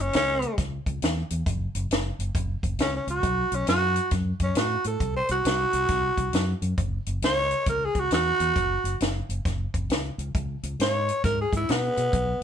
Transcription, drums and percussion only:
0.13 snare, closed hi-hat
0.42 closed hi-hat
0.58 kick, snare, closed hi-hat
0.86 kick, closed hi-hat
1.02 snare, closed hi-hat
1.30 closed hi-hat
1.46 kick, closed hi-hat
1.75 closed hi-hat
1.91 snare, closed hi-hat
2.20 closed hi-hat
2.35 kick, closed hi-hat
2.63 kick, closed hi-hat
2.79 snare, closed hi-hat
3.08 closed hi-hat
3.23 kick, closed hi-hat
3.52 closed hi-hat
3.67 snare, closed hi-hat
3.96 closed hi-hat
4.11 kick, snare, closed hi-hat
4.40 kick, closed hi-hat
4.55 snare, closed hi-hat
4.84 closed hi-hat
5.00 kick, closed hi-hat
5.29 closed hi-hat
5.45 snare, closed hi-hat
5.73 closed hi-hat
5.88 kick, snare, closed hi-hat
6.17 kick, closed hi-hat
6.33 snare, closed hi-hat
6.62 closed hi-hat
6.78 kick, closed hi-hat
7.06 closed hi-hat
7.22 snare, closed hi-hat
7.51 closed hi-hat
7.66 kick, closed hi-hat
7.95 kick, closed hi-hat
8.11 snare, closed hi-hat
8.40 closed hi-hat
8.56 kick, closed hi-hat
8.85 closed hi-hat
9.01 snare, closed hi-hat
9.30 closed hi-hat
9.45 kick, snare, closed hi-hat
9.74 kick, closed hi-hat
9.90 snare, closed hi-hat
10.19 closed hi-hat
10.35 kick, closed hi-hat
10.63 closed hi-hat
10.80 snare, closed hi-hat
11.09 closed hi-hat
11.24 kick, snare, closed hi-hat
11.53 kick, closed hi-hat
11.69 snare, closed hi-hat
11.97 closed hi-hat
12.13 kick, closed hi-hat

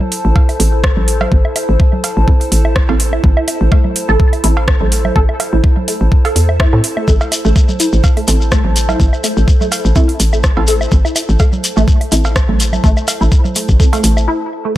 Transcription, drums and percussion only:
0.01 low conga
0.12 open hi-hat
0.36 kick, cowbell
0.49 open hi-hat, low woodblock
0.60 open hi-hat
0.84 kick, cross-stick
0.97 low conga
1.08 open hi-hat
1.21 cowbell, low conga, low woodblock
1.32 kick
1.45 low woodblock
1.56 open hi-hat, low woodblock
1.80 kick
1.93 low conga
2.04 open hi-hat, cowbell
2.28 kick
2.41 open hi-hat
2.52 open hi-hat
2.65 low woodblock
2.76 kick, cross-stick
2.89 cowbell
3.00 open hi-hat
3.13 low woodblock
3.24 kick
3.37 low woodblock
3.48 open hi-hat, low woodblock
3.72 kick, cowbell
3.85 low conga
3.96 open hi-hat
4.20 kick
4.33 open hi-hat, low woodblock
4.44 open hi-hat
4.57 cowbell
4.68 kick, cross-stick
4.81 low conga
4.92 open hi-hat
5.05 low conga, low woodblock
5.16 kick
5.29 low woodblock
5.40 open hi-hat, cowbell, low woodblock
5.64 kick
5.77 low conga
5.88 open hi-hat
6.12 kick
6.25 open hi-hat, cowbell
6.36 open hi-hat
6.49 low woodblock
6.60 kick, cross-stick
6.84 open hi-hat
6.97 low woodblock
7.08 kick, shekere
7.21 cowbell, low woodblock, shekere
7.32 open hi-hat, low woodblock, shekere
7.45 shekere
7.56 kick, shekere
7.69 low conga, shekere
7.80 open hi-hat, shekere
7.93 shekere
8.04 kick, cowbell, shekere
8.17 open hi-hat, low woodblock
8.28 open hi-hat, shekere
8.41 shekere
8.52 kick, cross-stick, shekere
8.65 low conga
8.76 open hi-hat, shekere
8.89 cowbell, low conga, low woodblock, shekere
9.00 kick, shekere
9.13 low woodblock, shekere
9.24 open hi-hat, low woodblock, shekere
9.37 shekere
9.48 kick, shekere
9.61 low conga, shekere
9.72 open hi-hat, cowbell, shekere
9.85 shekere
9.96 kick, shekere
10.09 open hi-hat
10.20 open hi-hat, shekere
10.33 low woodblock, shekere
10.43 kick, cross-stick, shekere
10.57 cowbell
10.67 open hi-hat, shekere
10.81 low woodblock, shekere
10.91 kick, shekere
11.05 low woodblock, shekere
11.16 open hi-hat, low woodblock, shekere
11.29 shekere
11.39 kick, cowbell, shekere
11.53 low conga, shekere
11.64 open hi-hat, shekere
11.77 shekere
11.88 kick, shekere
12.01 open hi-hat, low woodblock
12.12 open hi-hat, shekere
12.25 cowbell, shekere
12.36 kick, cross-stick, shekere
12.49 low conga
12.60 open hi-hat, shekere
12.73 low conga, low woodblock, shekere
12.84 kick, shekere
12.97 low woodblock, shekere
13.08 open hi-hat, cowbell, low woodblock, shekere
13.21 shekere
13.32 kick, shekere
13.45 low conga, shekere
13.55 open hi-hat, shekere
13.68 kick, shekere
13.80 kick, shekere
13.93 open hi-hat, cowbell, shekere
14.04 open hi-hat, shekere
14.17 low woodblock, shekere

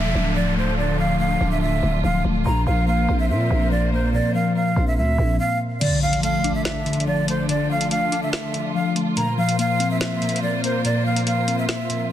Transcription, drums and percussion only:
5.81 closed hi-hat, crash
6.13 closed hi-hat
6.23 closed hi-hat
6.44 closed hi-hat
6.65 snare, closed hi-hat
6.86 closed hi-hat
6.93 closed hi-hat
7.00 closed hi-hat
7.28 closed hi-hat
7.49 closed hi-hat
7.81 closed hi-hat
7.91 closed hi-hat
8.12 closed hi-hat
8.33 snare, closed hi-hat
8.54 closed hi-hat
8.96 closed hi-hat
9.17 closed hi-hat
9.49 closed hi-hat
9.59 closed hi-hat
9.80 closed hi-hat
10.01 snare, closed hi-hat
10.22 closed hi-hat
10.29 closed hi-hat
10.36 closed hi-hat
10.64 closed hi-hat
10.85 closed hi-hat
11.16 closed hi-hat
11.27 closed hi-hat
11.48 closed hi-hat
11.69 snare, closed hi-hat
11.90 closed hi-hat

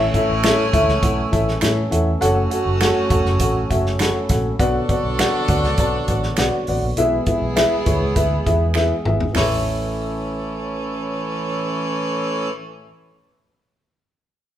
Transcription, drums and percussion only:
0.14 kick, closed hi-hat
0.44 finger snap, snare, closed hi-hat
0.73 kick, closed hi-hat
0.88 snare
1.03 kick, closed hi-hat
1.33 kick, closed hi-hat
1.48 snare
1.61 finger snap, snare, closed hi-hat
1.92 closed hi-hat
2.22 closed hi-hat
2.51 closed hi-hat
2.81 finger snap, snare, closed hi-hat
3.10 kick, closed hi-hat
3.25 snare
3.40 kick, closed hi-hat
3.70 kick, closed hi-hat
3.86 snare
3.99 finger snap, snare, closed hi-hat
4.29 kick, snare, closed hi-hat
4.59 kick, closed hi-hat
4.89 kick, closed hi-hat
5.19 finger snap, snare, closed hi-hat
5.48 kick, closed hi-hat
5.64 snare
5.78 kick, closed hi-hat
6.08 kick, closed hi-hat
6.23 snare
6.37 finger snap, snare, closed hi-hat
6.67 open hi-hat
6.97 closed hi-hat
7.26 kick, closed hi-hat
7.56 finger snap, snare, closed hi-hat
7.86 kick, closed hi-hat
8.16 kick, closed hi-hat
8.46 kick, closed hi-hat
8.74 finger snap, snare
9.05 mid tom
9.20 floor tom
9.35 finger snap, snare, floor tom, open hi-hat

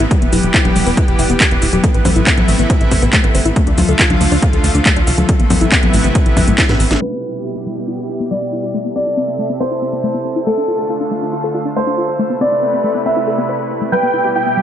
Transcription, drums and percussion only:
0.11 kick, closed hi-hat, shaker
0.22 closed hi-hat
0.33 open hi-hat, high conga, shaker
0.43 closed hi-hat, shaker
0.54 kick, clap, closed hi-hat, shaker
0.65 closed hi-hat, high conga
0.76 open hi-hat, shaker
0.87 open hi-hat, shaker
0.97 kick, closed hi-hat, shaker
1.08 closed hi-hat
1.19 open hi-hat, shaker
1.30 closed hi-hat, shaker
1.40 kick, clap, closed hi-hat, shaker
1.51 closed hi-hat
1.62 open hi-hat, shaker
1.73 closed hi-hat, high conga, shaker
1.84 kick, closed hi-hat, shaker
1.94 closed hi-hat
2.05 kick, open hi-hat, high conga, shaker
2.16 closed hi-hat, shaker
2.27 kick, clap, closed hi-hat, shaker
2.38 closed hi-hat, high conga
2.48 open hi-hat, shaker
2.59 closed hi-hat, shaker
2.70 kick, closed hi-hat, shaker
2.81 closed hi-hat
2.92 kick, open hi-hat, shaker
3.02 closed hi-hat, shaker
3.13 kick, clap, closed hi-hat, shaker
3.24 closed hi-hat
3.35 open hi-hat, shaker
3.46 closed hi-hat, shaker
3.56 kick, closed hi-hat, shaker
3.67 closed hi-hat
3.78 open hi-hat, high conga, shaker
3.89 closed hi-hat, shaker
3.99 kick, clap, closed hi-hat, shaker
4.10 closed hi-hat, high conga
4.21 open hi-hat, shaker
4.32 open hi-hat, shaker
4.42 kick, closed hi-hat, shaker
4.53 closed hi-hat
4.64 open hi-hat, shaker
4.75 closed hi-hat, shaker
4.86 kick, clap, closed hi-hat, shaker
4.96 closed hi-hat
5.07 open hi-hat, shaker
5.18 high conga, shaker
5.29 kick, closed hi-hat, shaker
5.40 closed hi-hat
5.50 kick, open hi-hat, high conga, shaker
5.61 closed hi-hat, shaker
5.72 kick, clap, closed hi-hat, shaker
5.83 closed hi-hat, high conga
5.94 open hi-hat, shaker
6.04 closed hi-hat, shaker
6.15 kick, closed hi-hat, shaker
6.26 closed hi-hat
6.37 kick, open hi-hat, high conga, shaker
6.48 closed hi-hat, shaker
6.58 kick, snare, clap, closed hi-hat, shaker
6.69 snare, closed hi-hat
6.80 open hi-hat, shaker
6.91 snare, closed hi-hat, shaker
7.88 closed hi-hat
9.17 closed hi-hat
10.03 closed hi-hat
10.25 closed hi-hat
10.47 closed hi-hat
10.90 closed hi-hat
11.33 closed hi-hat
11.55 closed hi-hat
11.76 closed hi-hat
12.20 closed hi-hat
12.41 closed hi-hat
12.63 closed hi-hat
13.06 closed hi-hat
13.28 closed hi-hat
13.49 closed hi-hat
13.71 closed hi-hat
13.92 closed hi-hat
14.35 closed hi-hat

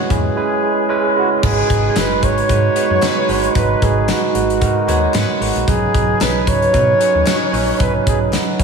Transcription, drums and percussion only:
0.10 kick, closed hi-hat
1.43 kick, crash
1.70 kick, closed hi-hat
1.96 snare, clap, closed hi-hat, tambourine
2.23 kick, closed hi-hat
2.38 closed hi-hat
2.49 kick, closed hi-hat
2.76 closed hi-hat
3.02 snare, clap, closed hi-hat, tambourine
3.29 open hi-hat
3.44 closed hi-hat
3.55 kick, closed hi-hat
3.82 kick, closed hi-hat
4.08 snare, clap, closed hi-hat, tambourine
4.35 closed hi-hat
4.50 closed hi-hat
4.61 kick, closed hi-hat
4.89 closed hi-hat
5.14 snare, clap, closed hi-hat, tambourine
5.42 open hi-hat
5.56 closed hi-hat
5.68 kick, closed hi-hat
5.95 kick, closed hi-hat
6.21 snare, clap, closed hi-hat, tambourine
6.47 kick, closed hi-hat
6.62 closed hi-hat
6.74 kick, closed hi-hat
7.01 closed hi-hat
7.27 snare, clap, closed hi-hat, tambourine
7.54 open hi-hat
7.80 kick, closed hi-hat
8.07 kick, closed hi-hat
8.33 snare, clap, closed hi-hat, tambourine
8.60 kick, closed hi-hat

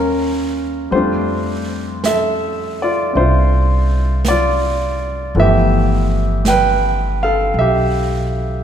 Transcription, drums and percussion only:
0.92 brush sweep
2.04 brush sweep, snare, hi-hat pedal
3.15 brush sweep
4.25 brush sweep, snare, hi-hat pedal
5.35 brush sweep
6.45 brush sweep, snare, hi-hat pedal
7.54 brush sweep

